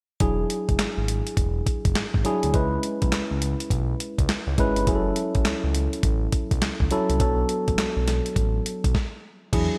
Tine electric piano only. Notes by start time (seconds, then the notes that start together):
0.21 F#3 D4 E4 G#4
2.25 F#3 D4 E4 G#4
2.54 G#3 C#4 E4 B4
4.59 G#3 C#4 E4 B4
4.87 F#3 C#4 E4 G#4
4.95 A4
6.91 F#3 C#4 E4 A4
7.20 F#3 B3 D4 A4
9.52 F#3 D4 E4 G#4